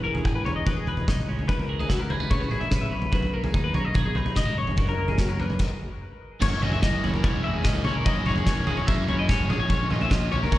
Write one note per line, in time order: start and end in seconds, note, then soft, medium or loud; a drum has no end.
0.00 0.25 E1 medium
0.00 1.28 E2 medium
0.00 0.14 A#4 medium
0.05 1.47 E3 medium
0.14 0.35 G#4 medium
0.14 floor tom medium
0.25 0.44 G#1 medium
0.25 0.65 G#3 medium
0.25 kick medium
0.35 0.45 B4 medium
0.44 0.64 E1 medium
0.44 1.08 D#4 medium
0.44 0.55 C#5 medium
0.44 floor tom medium
0.56 0.66 D#5 medium
0.66 1.05 E1 loud
0.66 1.68 G#3 medium
0.66 0.77 B4 medium
0.66 kick loud
0.66 floor tom medium
0.66 mid tom medium
0.77 0.87 G#4 medium
0.87 1.26 G#4 medium
0.87 1.08 B4 medium
0.87 floor tom medium
0.97 floor tom medium
1.08 1.27 C2 medium
1.08 1.27 D#4 medium
1.08 1.28 D#5 medium
1.08 kick medium
1.08 snare medium
1.18 mid tom medium
1.28 1.86 C#2 medium
1.28 1.49 C#3 medium
1.28 1.48 C#5 medium
1.39 floor tom medium
1.48 2.92 E3 medium
1.48 1.59 B4 medium
1.48 kick medium
1.48 floor tom medium
1.59 1.80 A#4 medium
1.59 floor tom medium
1.69 1.79 G#3 medium
1.79 2.10 B3 soft
1.79 1.89 G#4 medium
1.79 floor tom medium
1.89 2.28 C#2 medium
1.89 2.29 E4 medium
1.89 1.99 F#4 medium
1.89 kick medium
1.89 snare medium
1.99 2.10 A#4 medium
2.10 2.20 G#3 medium
2.10 2.31 B4 medium
2.10 floor tom medium
2.20 2.70 B3 soft
2.20 floor tom medium
2.30 2.50 C#3 medium
2.30 2.40 E4 medium
2.30 2.41 C#5 medium
2.30 kick loud
2.30 floor tom medium
2.30 mid tom medium
2.40 2.92 F#4 soft
2.40 2.50 B4 medium
2.40 floor tom medium
2.51 2.90 E4 medium
2.51 2.62 G#4 medium
2.51 floor tom medium
2.51 mid tom medium
2.61 2.72 E5 medium
2.61 floor tom medium
2.71 2.90 C#3 medium
2.71 2.90 B3 medium
2.71 2.82 B4 medium
2.71 kick medium
2.71 snare medium
2.71 mid tom medium
2.81 2.92 E5 medium
2.81 mid tom medium
2.91 3.54 B1 medium
2.91 4.56 B2 medium
2.91 3.13 B4 medium
3.02 floor tom medium
3.12 4.54 F#3 medium
3.12 3.33 B4 medium
3.12 kick loud
3.12 floor tom medium
3.22 floor tom medium
3.33 3.74 A#3 medium
3.33 3.44 A#4 medium
3.44 3.65 G#4 medium
3.44 floor tom medium
3.54 3.73 D#2 medium
3.54 4.15 D#4 medium
3.54 kick medium
3.64 3.74 B4 medium
3.73 3.93 B1 medium
3.73 4.35 A#3 medium
3.73 3.85 C#5 medium
3.73 floor tom medium
3.85 3.95 D#5 medium
3.94 4.33 B1 loud
3.94 4.55 G#4 medium
3.94 4.05 B4 medium
3.94 kick loud
3.94 floor tom medium
3.94 mid tom medium
4.06 4.16 G#4 medium
4.15 4.55 D#4 medium
4.15 4.36 B4 medium
4.15 floor tom medium
4.26 floor tom medium
4.36 4.55 C#2 medium
4.36 4.45 G#3 medium
4.36 4.57 D#5 medium
4.36 kick medium
4.36 snare medium
4.45 4.56 A#3 soft
4.45 mid tom medium
4.56 5.15 F#1 medium
4.56 5.57 F#2 medium
4.56 4.77 C#5 medium
4.67 floor tom medium
4.77 5.57 F#3 medium
4.77 4.87 A#4 medium
4.77 kick medium
4.77 floor tom medium
4.87 5.09 A#4 medium
4.87 floor tom medium
4.97 5.39 A#3 medium
5.08 5.18 G#4 medium
5.08 floor tom medium
5.18 5.57 F#1 loud
5.18 5.58 C#4 medium
5.18 5.29 F#4 medium
5.18 kick medium
5.18 snare medium
5.29 5.39 A#4 medium
5.39 5.58 A#3 medium
5.39 5.60 B4 medium
5.39 floor tom medium
5.50 floor tom medium
5.59 kick loud
5.59 crash medium
6.40 6.80 F#1 loud
6.40 6.81 F#2 loud
6.40 8.03 F#2 medium
6.40 6.81 C#3 medium
6.40 6.63 E3 loud
6.40 6.62 A#3 loud
6.40 6.61 C#4 loud
6.40 6.62 C#5 loud
6.40 kick loud
6.40 floor tom medium
6.40 crash loud
6.62 6.83 E3 medium
6.62 7.25 G#3 medium
6.62 6.83 A#3 medium
6.62 6.83 C#4 medium
6.62 6.72 D#5 medium
6.62 floor tom medium
6.62 mid tom medium
6.72 6.82 E5 medium
6.72 floor tom medium
6.82 7.21 F#1 medium
6.82 7.22 F#2 loud
6.82 7.23 C#3 loud
6.82 7.04 E3 loud
6.82 7.04 A#3 loud
6.82 7.03 C#4 loud
6.82 7.67 C#4 medium
6.82 7.04 D#5 medium
6.82 kick loud
6.82 snare medium
7.03 7.23 E3 medium
7.03 7.24 A#3 medium
7.03 7.25 C#4 medium
7.03 7.44 E4 medium
7.03 7.14 C#5 medium
7.03 floor tom loud
7.14 7.24 A#4 medium
7.14 floor tom medium
7.23 7.62 E1 loud
7.23 7.64 F#2 loud
7.23 7.64 C#3 medium
7.23 7.45 E3 loud
7.23 8.27 G#3 medium
7.23 7.45 A#3 medium
7.23 7.43 C#4 medium
7.23 7.44 C#5 medium
7.23 kick loud
7.23 floor tom medium
7.44 7.64 E3 medium
7.44 7.66 A#3 medium
7.44 7.66 C#4 medium
7.44 7.86 E4 medium
7.44 7.54 E5 medium
7.54 7.65 G#4 medium
7.64 8.03 C#2 loud
7.64 8.05 C#3 medium
7.64 7.85 E3 medium
7.64 7.85 A#3 medium
7.64 7.84 C#4 medium
7.64 8.48 C#4 medium
7.64 7.84 D#5 medium
7.64 kick loud
7.64 snare medium
7.64 mid tom medium
7.75 floor tom medium
7.84 8.06 E3 medium
7.84 8.06 A#3 medium
7.84 8.07 C#4 medium
7.84 8.66 E4 medium
7.84 7.95 C#5 medium
7.84 floor tom medium
7.84 mid tom medium
7.95 8.06 A#4 medium
8.05 8.44 F#1 loud
8.05 8.44 F#2 medium
8.05 9.47 F#2 medium
8.05 8.45 C#3 medium
8.05 8.26 E3 medium
8.05 8.26 A#3 loud
8.05 8.25 C#4 loud
8.05 8.26 D#5 medium
8.05 kick loud
8.05 floor tom medium
8.26 8.45 E3 medium
8.26 8.87 G#3 medium
8.26 8.47 A#3 medium
8.26 8.47 C#4 medium
8.26 8.36 C#5 medium
8.26 floor tom medium
8.26 mid tom medium
8.36 8.46 G#4 medium
8.36 floor tom medium
8.46 8.84 E1 loud
8.46 8.86 F#2 medium
8.46 8.87 C#3 medium
8.46 8.67 E3 loud
8.46 8.67 A#3 loud
8.46 8.66 C#4 loud
8.46 9.29 C#4 medium
8.46 8.67 C#5 medium
8.46 kick loud
8.46 snare medium
8.67 8.87 E3 medium
8.67 8.88 A#3 medium
8.67 8.88 C#4 medium
8.67 9.07 E4 medium
8.67 8.77 G#4 medium
8.67 floor tom medium
8.77 8.87 C#5 medium
8.77 floor tom medium
8.87 9.28 F#2 loud
8.87 9.25 F#2 loud
8.87 9.27 C#3 loud
8.87 9.08 E3 loud
8.87 9.70 G#3 medium
8.87 9.08 A#3 loud
8.87 9.08 C#4 loud
8.87 9.08 E5 medium
8.87 kick loud
8.87 floor tom medium
9.08 9.28 E3 medium
9.08 9.29 A#3 medium
9.08 9.30 C#4 medium
9.08 9.49 E4 medium
9.08 9.19 C#5 medium
9.08 floor tom medium
9.19 9.29 D#5 medium
9.28 9.47 F#1 loud
9.28 9.48 C#3 medium
9.28 9.48 E3 medium
9.28 9.49 A#3 medium
9.28 9.70 C#4 medium
9.28 9.49 C#4 medium
9.28 9.49 C#5 medium
9.28 kick loud
9.28 snare medium
9.28 mid tom medium
9.39 floor tom medium
9.49 10.06 A#1 medium
9.49 10.58 A#2 medium
9.49 9.68 A#2 medium
9.49 9.69 F3 medium
9.49 9.70 A#3 medium
9.49 9.70 C#4 medium
9.49 9.60 G#4 medium
9.49 floor tom medium
9.49 mid tom medium
9.60 9.69 C#5 medium
9.60 mid tom medium
9.69 10.10 A#2 medium
9.69 9.92 F3 loud
9.69 9.90 A#3 loud
9.69 10.31 C#4 medium
9.69 9.90 C#4 loud
9.69 9.90 C#5 medium
9.69 kick loud
9.69 floor tom medium
9.90 10.10 F3 medium
9.90 10.11 A#3 medium
9.90 10.11 C#4 medium
9.90 10.10 F4 medium
9.90 10.00 D#5 medium
9.90 floor tom medium
9.90 mid tom medium
10.01 10.12 E5 medium
10.01 floor tom medium
10.10 10.49 A#1 medium
10.10 10.50 A#2 loud
10.10 10.32 F3 loud
10.10 10.32 A#3 loud
10.10 10.31 C#4 loud
10.10 10.51 F4 medium
10.10 10.31 D#5 medium
10.10 kick loud
10.10 snare medium
10.31 10.51 F3 medium
10.31 10.52 A#3 medium
10.31 10.52 C#4 medium
10.31 10.58 C#4 medium
10.31 10.42 C#5 medium
10.31 floor tom medium
10.43 10.52 A#4 medium
10.43 floor tom medium
10.51 10.58 G#1 loud
10.51 10.58 A#2 medium
10.51 10.58 F3 medium
10.51 10.58 A#3 loud
10.51 10.58 C#4 loud
10.51 10.58 G#4 medium
10.51 10.58 C#5 medium
10.51 kick loud
10.51 floor tom medium